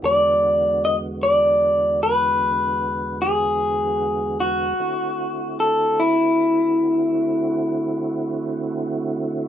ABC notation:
X:1
M:12/8
L:1/8
Q:3/8=51
K:Edor
V:1 name="Clean electric guitar"
d2 ^d =d2 B3 ^G3 F- | F2 A E8- E |]
V:2 name="Tonewheel organ"
[E,,D,^G,B,F]12 | [D,A,=CEF]12 |]